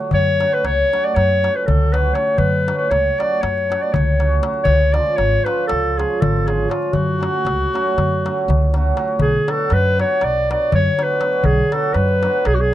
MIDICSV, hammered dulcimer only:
0, 0, Header, 1, 2, 480
1, 0, Start_track
1, 0, Key_signature, 3, "minor"
1, 0, Tempo, 504202
1, 112, Time_signature, 9, 3, 24, 8
1, 7792, Tempo, 498753
1, 12177, End_track
2, 0, Start_track
2, 0, Title_t, "Hammered dulcimer"
2, 0, Program_c, 0, 15
2, 0, Note_on_c, 0, 54, 57
2, 160, Note_off_c, 0, 54, 0
2, 386, Note_on_c, 0, 54, 64
2, 390, Note_on_c, 0, 57, 52
2, 395, Note_on_c, 0, 61, 55
2, 406, Note_on_c, 0, 66, 74
2, 522, Note_off_c, 0, 57, 0
2, 524, Note_off_c, 0, 61, 0
2, 530, Note_off_c, 0, 66, 0
2, 872, Note_off_c, 0, 54, 0
2, 881, Note_on_c, 0, 57, 65
2, 883, Note_on_c, 0, 54, 60
2, 886, Note_on_c, 0, 61, 61
2, 890, Note_on_c, 0, 66, 70
2, 1015, Note_off_c, 0, 57, 0
2, 1017, Note_off_c, 0, 61, 0
2, 1019, Note_off_c, 0, 66, 0
2, 1350, Note_off_c, 0, 54, 0
2, 1361, Note_on_c, 0, 54, 61
2, 1366, Note_on_c, 0, 57, 45
2, 1370, Note_on_c, 0, 61, 52
2, 1382, Note_on_c, 0, 66, 61
2, 1504, Note_off_c, 0, 57, 0
2, 1506, Note_off_c, 0, 61, 0
2, 1513, Note_off_c, 0, 66, 0
2, 1817, Note_off_c, 0, 54, 0
2, 1828, Note_on_c, 0, 54, 58
2, 1835, Note_on_c, 0, 57, 51
2, 1846, Note_on_c, 0, 61, 49
2, 1847, Note_on_c, 0, 66, 67
2, 1970, Note_off_c, 0, 57, 0
2, 1976, Note_off_c, 0, 61, 0
2, 1976, Note_off_c, 0, 66, 0
2, 2037, Note_off_c, 0, 54, 0
2, 2048, Note_on_c, 0, 54, 54
2, 2059, Note_on_c, 0, 57, 57
2, 2063, Note_on_c, 0, 66, 61
2, 2064, Note_on_c, 0, 61, 57
2, 2189, Note_off_c, 0, 57, 0
2, 2191, Note_off_c, 0, 66, 0
2, 2192, Note_off_c, 0, 61, 0
2, 2531, Note_off_c, 0, 54, 0
2, 2542, Note_on_c, 0, 54, 65
2, 2549, Note_on_c, 0, 57, 59
2, 2554, Note_on_c, 0, 61, 55
2, 2561, Note_on_c, 0, 66, 66
2, 2683, Note_off_c, 0, 57, 0
2, 2685, Note_off_c, 0, 61, 0
2, 2689, Note_off_c, 0, 66, 0
2, 3018, Note_off_c, 0, 54, 0
2, 3029, Note_on_c, 0, 54, 66
2, 3031, Note_on_c, 0, 57, 60
2, 3042, Note_on_c, 0, 61, 57
2, 3043, Note_on_c, 0, 66, 65
2, 3171, Note_off_c, 0, 57, 0
2, 3177, Note_off_c, 0, 61, 0
2, 3177, Note_off_c, 0, 66, 0
2, 3506, Note_off_c, 0, 54, 0
2, 3512, Note_on_c, 0, 57, 48
2, 3517, Note_on_c, 0, 54, 52
2, 3521, Note_on_c, 0, 61, 51
2, 3528, Note_on_c, 0, 66, 71
2, 3659, Note_off_c, 0, 57, 0
2, 3664, Note_off_c, 0, 61, 0
2, 3667, Note_off_c, 0, 66, 0
2, 3974, Note_off_c, 0, 54, 0
2, 3985, Note_on_c, 0, 54, 55
2, 3995, Note_on_c, 0, 57, 59
2, 3997, Note_on_c, 0, 61, 55
2, 4006, Note_on_c, 0, 66, 68
2, 4132, Note_off_c, 0, 57, 0
2, 4133, Note_off_c, 0, 61, 0
2, 4137, Note_off_c, 0, 66, 0
2, 4200, Note_off_c, 0, 54, 0
2, 4211, Note_on_c, 0, 54, 55
2, 4220, Note_on_c, 0, 57, 50
2, 4230, Note_on_c, 0, 61, 60
2, 4235, Note_on_c, 0, 66, 69
2, 4352, Note_off_c, 0, 57, 0
2, 4357, Note_off_c, 0, 61, 0
2, 4359, Note_off_c, 0, 66, 0
2, 4485, Note_off_c, 0, 54, 0
2, 4699, Note_on_c, 0, 53, 72
2, 4707, Note_on_c, 0, 61, 56
2, 4711, Note_on_c, 0, 56, 58
2, 4712, Note_on_c, 0, 65, 73
2, 4843, Note_off_c, 0, 61, 0
2, 4846, Note_off_c, 0, 65, 0
2, 5188, Note_off_c, 0, 53, 0
2, 5192, Note_off_c, 0, 56, 0
2, 5199, Note_on_c, 0, 53, 64
2, 5203, Note_on_c, 0, 56, 61
2, 5204, Note_on_c, 0, 61, 61
2, 5211, Note_on_c, 0, 65, 80
2, 5339, Note_off_c, 0, 61, 0
2, 5343, Note_off_c, 0, 65, 0
2, 5681, Note_off_c, 0, 53, 0
2, 5690, Note_off_c, 0, 56, 0
2, 5692, Note_on_c, 0, 53, 64
2, 5700, Note_on_c, 0, 61, 55
2, 5701, Note_on_c, 0, 56, 50
2, 5710, Note_on_c, 0, 65, 59
2, 5834, Note_off_c, 0, 61, 0
2, 5839, Note_off_c, 0, 65, 0
2, 6148, Note_off_c, 0, 53, 0
2, 6158, Note_off_c, 0, 56, 0
2, 6159, Note_on_c, 0, 53, 57
2, 6169, Note_on_c, 0, 56, 50
2, 6173, Note_on_c, 0, 61, 54
2, 6179, Note_on_c, 0, 65, 56
2, 6301, Note_off_c, 0, 61, 0
2, 6304, Note_off_c, 0, 65, 0
2, 6349, Note_off_c, 0, 53, 0
2, 6350, Note_off_c, 0, 56, 0
2, 6360, Note_on_c, 0, 53, 53
2, 6362, Note_on_c, 0, 56, 53
2, 6372, Note_on_c, 0, 61, 57
2, 6373, Note_on_c, 0, 65, 62
2, 6508, Note_off_c, 0, 61, 0
2, 6508, Note_off_c, 0, 65, 0
2, 6645, Note_off_c, 0, 53, 0
2, 6645, Note_off_c, 0, 56, 0
2, 6840, Note_on_c, 0, 54, 61
2, 6853, Note_on_c, 0, 57, 57
2, 6856, Note_on_c, 0, 61, 62
2, 6858, Note_on_c, 0, 66, 68
2, 6995, Note_off_c, 0, 57, 0
2, 6997, Note_off_c, 0, 61, 0
2, 6998, Note_off_c, 0, 66, 0
2, 7351, Note_off_c, 0, 54, 0
2, 7363, Note_on_c, 0, 54, 78
2, 7367, Note_on_c, 0, 57, 68
2, 7376, Note_on_c, 0, 61, 76
2, 7386, Note_on_c, 0, 66, 85
2, 7499, Note_off_c, 0, 57, 0
2, 7503, Note_off_c, 0, 61, 0
2, 7508, Note_off_c, 0, 66, 0
2, 7845, Note_off_c, 0, 54, 0
2, 7856, Note_on_c, 0, 54, 65
2, 7857, Note_on_c, 0, 57, 62
2, 7873, Note_on_c, 0, 61, 62
2, 7878, Note_on_c, 0, 66, 75
2, 7991, Note_off_c, 0, 57, 0
2, 7999, Note_off_c, 0, 61, 0
2, 8002, Note_off_c, 0, 66, 0
2, 8323, Note_off_c, 0, 54, 0
2, 8335, Note_on_c, 0, 54, 62
2, 8344, Note_on_c, 0, 61, 58
2, 8346, Note_on_c, 0, 57, 67
2, 8354, Note_on_c, 0, 66, 72
2, 8466, Note_off_c, 0, 61, 0
2, 8468, Note_off_c, 0, 57, 0
2, 8472, Note_off_c, 0, 66, 0
2, 8539, Note_off_c, 0, 54, 0
2, 8550, Note_on_c, 0, 54, 69
2, 8554, Note_on_c, 0, 57, 65
2, 8565, Note_on_c, 0, 61, 61
2, 8569, Note_on_c, 0, 66, 77
2, 8679, Note_off_c, 0, 57, 0
2, 8685, Note_off_c, 0, 61, 0
2, 8687, Note_off_c, 0, 66, 0
2, 8807, Note_off_c, 0, 54, 0
2, 9033, Note_on_c, 0, 59, 62
2, 9035, Note_on_c, 0, 54, 64
2, 9046, Note_on_c, 0, 62, 66
2, 9047, Note_on_c, 0, 66, 73
2, 9167, Note_off_c, 0, 59, 0
2, 9174, Note_off_c, 0, 62, 0
2, 9174, Note_off_c, 0, 66, 0
2, 9510, Note_off_c, 0, 54, 0
2, 9521, Note_on_c, 0, 54, 69
2, 9521, Note_on_c, 0, 59, 59
2, 9532, Note_on_c, 0, 66, 79
2, 9533, Note_on_c, 0, 62, 56
2, 9659, Note_off_c, 0, 59, 0
2, 9664, Note_off_c, 0, 66, 0
2, 9665, Note_off_c, 0, 62, 0
2, 10004, Note_off_c, 0, 54, 0
2, 10016, Note_on_c, 0, 54, 57
2, 10026, Note_on_c, 0, 59, 51
2, 10031, Note_on_c, 0, 66, 62
2, 10033, Note_on_c, 0, 62, 49
2, 10158, Note_off_c, 0, 59, 0
2, 10161, Note_off_c, 0, 66, 0
2, 10162, Note_off_c, 0, 62, 0
2, 10472, Note_off_c, 0, 54, 0
2, 10484, Note_on_c, 0, 54, 58
2, 10492, Note_on_c, 0, 59, 55
2, 10496, Note_on_c, 0, 62, 57
2, 10500, Note_on_c, 0, 66, 60
2, 10622, Note_off_c, 0, 59, 0
2, 10624, Note_off_c, 0, 62, 0
2, 10626, Note_off_c, 0, 66, 0
2, 10688, Note_off_c, 0, 54, 0
2, 10700, Note_on_c, 0, 54, 61
2, 10707, Note_on_c, 0, 59, 56
2, 10717, Note_on_c, 0, 62, 57
2, 10719, Note_on_c, 0, 66, 63
2, 10837, Note_off_c, 0, 59, 0
2, 10842, Note_off_c, 0, 62, 0
2, 10843, Note_off_c, 0, 66, 0
2, 11183, Note_off_c, 0, 54, 0
2, 11194, Note_on_c, 0, 54, 68
2, 11203, Note_on_c, 0, 59, 63
2, 11209, Note_on_c, 0, 62, 58
2, 11214, Note_on_c, 0, 66, 71
2, 11334, Note_off_c, 0, 59, 0
2, 11335, Note_off_c, 0, 62, 0
2, 11335, Note_off_c, 0, 66, 0
2, 11681, Note_off_c, 0, 54, 0
2, 11693, Note_on_c, 0, 54, 61
2, 11698, Note_on_c, 0, 62, 65
2, 11699, Note_on_c, 0, 59, 60
2, 11703, Note_on_c, 0, 66, 78
2, 11825, Note_off_c, 0, 62, 0
2, 11826, Note_off_c, 0, 59, 0
2, 11828, Note_off_c, 0, 66, 0
2, 12164, Note_off_c, 0, 54, 0
2, 12177, End_track
0, 0, End_of_file